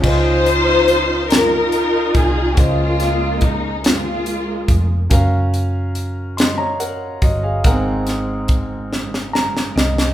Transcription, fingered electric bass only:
\new Staff \with { instrumentName = "Fingered electric bass" } { \clef bass \time 6/8 \key des \major \tempo 4. = 47 des,2~ des,8 c,8 | des,2~ des,8 f,,8 | ges,,2~ ges,,8 g,,8 | aes,,2~ aes,,8 c,8 | }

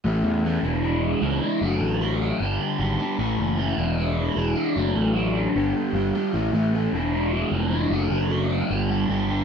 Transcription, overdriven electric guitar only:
\new Staff \with { instrumentName = "Overdriven electric guitar" } { \time 4/4 \key a \major \tempo 4 = 152 <a, e a cis' e'>4 <a, e a cis' e'>8 <e, b, e gis d' e'>8 <e gis d' e'>4 <e gis d' e'>8 <e gis d' e'>8 | <fis a d' fis'>4 <fis a d' fis'>8 <a d' fis'>8 <g, d g b d' g'>4 <g b d' g'>8 <g b d' g'>8 | <a, e a cis' e'>4 <a, e a cis' e'>8 <e, b, e gis d' e'>8 <e gis d' e'>4 <e gis d' e'>8 <e gis d' e'>8 | <fis a d' fis'>4 <fis a d' fis'>8 <a d' fis'>8 <g, d g b d' g'>4 <g b d' g'>8 <g b d' g'>8 |
<a, e a cis' e'>8 <a, e a cis' e'>8 <a, e a cis' e'>8 <e, b, e gis d' e'>8 <e, b, e gis d' e'>8 <e, b, e gis d' e'>8 <e, b, e gis d' e'>8 <e, b, e gis d' e'>8 | <fis a d' fis'>8 <fis a d' fis'>8 <fis a d' fis'>8 <fis a d' fis'>8 <g, d g b d' g'>8 <g, d g b d' g'>8 <g, d g b d' g'>8 <g, d g b d' g'>8 | }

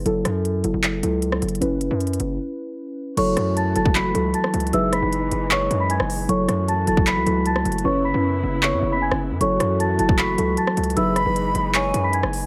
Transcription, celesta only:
\new Staff \with { instrumentName = "Celesta" } { \time 4/4 \key fis \dorian \tempo 4 = 154 r1 | r1 | <cis'' cis'''>4 <a'' a'''>8 <a'' a'''>8 <b'' b'''>4 <a'' a'''>4 | <e'' e'''>8 <b'' b'''>4. <cis'' cis'''>8. <b'' b'''>16 <gis'' gis'''>4 |
<cis'' cis'''>4 <a'' a'''>8 <a'' a'''>8 <b'' b'''>4 <a'' a'''>4 | <cis'' cis'''>8 <b'' b'''>4. <cis'' cis'''>8. <b'' b'''>16 <gis'' gis'''>8 r8 | <cis'' cis'''>4 <a'' a'''>8 <a'' a'''>8 <b'' b'''>4 <a'' a'''>4 | <e'' e'''>8 <b'' b'''>4. <cis'' cis'''>8. <b'' b'''>16 <gis'' gis'''>4 | }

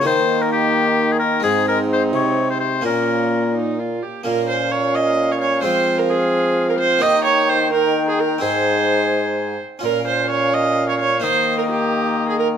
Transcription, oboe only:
\new Staff \with { instrumentName = "Oboe" } { \time 6/8 \key bes \dorian \tempo 4. = 86 c''8. bes'16 g'4~ g'16 aes'16 bes'8 | aes'8 bes'8 c''8 des''8. c''16 c''8 | bes'4. r4. | f''2. |
f''2. | g''4. g''4. | aes''2~ aes''8 r8 | f''2. |
ees''2. | }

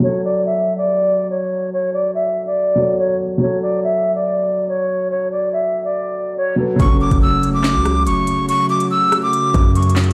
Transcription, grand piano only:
\new Staff \with { instrumentName = "Grand piano" } { \time 4/4 \key fis \minor \tempo 4 = 142 <fis fis' a'>1~ | <fis fis' a'>2~ <fis fis' a'>8 <fis fis' a' cis''>4. | <fis fis' a'>1~ | <fis fis' a'>2.~ <fis fis' a'>8 <fis fis' a' b'>8 |
<fis cis' fis' a'>1~ | <fis cis' fis' a'>1 | }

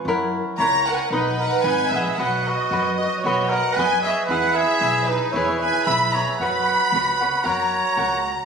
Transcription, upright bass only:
\new Staff \with { instrumentName = "Upright bass" } { \clef bass \time 2/4 \key b \major \tempo 4 = 114 fis,4 cis,4 | b,,4 gis,,8 ais,,8 | b,,4 fis,4 | b,,4 fis,4 |
e,4 b,,4 | e,4 b,,4 | fis,4 cis,4 | fis,4 cis,4 | }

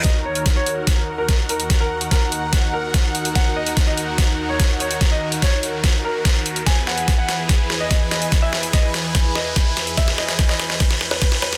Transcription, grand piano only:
\new Staff \with { instrumentName = "Grand piano" } { \time 4/4 \key ees \phrygian \tempo 4 = 145 ees''16 r16 des''8 r16 des''8 r4 bes'8 r16 bes'8 | r16 bes'8 r16 bes'8 r4 bes'8 r4 | ges''16 r16 ees''8 r16 ees''8 r4 des''8 r16 des''8 | r16 ees''8 r16 des''8 r4 bes'8 r4 |
gis''16 r16 ges''8 r16 ges''8 r4 ees''8 r16 ees''8 | r16 e''8 r16 ees''8 r4 ees''8 r4 | e''16 r16 ees''8 r16 ees''8 r4 b'8 r16 b'8 | }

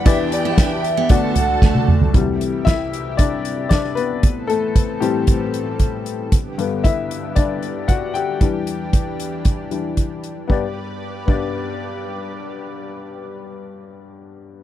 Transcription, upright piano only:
<<
  \new Staff \with { instrumentName = "Upright piano" } { \time 4/4 \key g \major \tempo 4 = 115 <b e' g' d''>4. r8 <a d' fis' d''>4. r8 | r4 <e' e''>4 <d' d''>4 <d' d''>8 <b b'>8~ | <b b'>8 <a a'>4 <g g'>2 r8 | r4 <e' e''>4 <d' d''>4 <fis' fis''>8 <g' g''>8~ |
<g' g''>2. r4 | <b d' g' d''>8 r4 <b d' g' d''>2~ <b d' g' d''>8~ | <b d' g' d''>1 | }
  \new Staff \with { instrumentName = "Upright piano" } { \clef bass \time 4/4 \key g \major <e, e>2 <d, d>2 | <c e g>4. r2 r8 | r4. <a, e c'>4. r4 | r8 <g, d b>8 r2. |
<e g d'>4. r4 <e g d'>8 r4 | g,8 r4 g,2~ g,8~ | g,1 | }
>>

